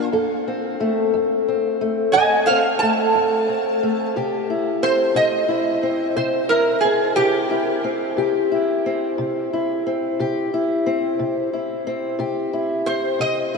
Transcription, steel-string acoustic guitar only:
Already playing: F4
0.12 F2 A4
0.48 C4
0.80 A3
1.14 F2
1.48 C4
1.81 A3
2.15 F2 A4
2.50 C4
2.82 A3
3.15 F2
3.49 C4
3.83 A3
4.16 C3 G4
4.50 E4
4.83 C4
5.15 C3
5.48 E4
5.83 C4
6.16 C3
6.51 E4
6.85 C4
7.17 C3
7.51 E4
7.84 C4
8.17 C3 G4
8.52 E4
8.86 C4
9.18 C3
9.53 E4
9.87 C4
10.19 C3 G4
10.54 E4
10.86 C4
11.19 C3
11.53 E4
11.87 C4
12.19 C3 G4
12.53 E4
12.87 C4
13.19 C3
13.54 E4

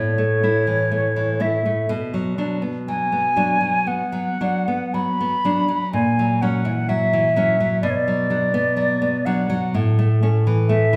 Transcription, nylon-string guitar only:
Already playing: A2
0.18 A3
0.43 A3 E4
0.67 E3
0.91 A3
1.16 E3
1.40 A3 E4
1.66 A3
1.89 B2
2.14 F#3
2.38 F#3 D4
2.62 B3
2.88 F#3
3.12 B3
3.36 F#3 D4
3.61 F#3
3.87 B3
4.12 F#3
4.41 F#3 D4
4.68 B3
4.94 F#3
5.21 B3
5.45 F#3 D4
5.68 F#3
5.93 A#2
6.19 F#3
6.42 F#3 C#4
6.65 E3
6.89 F#3
7.13 E3
7.36 F#3 C#4
7.60 F#3
7.83 B2
8.08 F#3
8.30 F#3 D4
8.54 B3
8.77 F#3
9.02 B3
9.26 F#3 D4
9.50 F#3
9.74 A2
9.99 A3
10.23 A3 C#4
10.47 E3
10.69 A3
10.93 E3

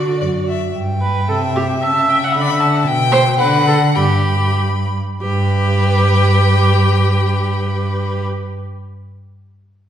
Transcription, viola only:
Already playing: F#4
1.02 B4
1.29 A4
1.56 G4
1.82 E5
2.24 F#5
2.32 E5
2.42 D5
2.50 E5
3.12 C5
3.39 B4
3.68 A4
3.97 G4
5.22 G4

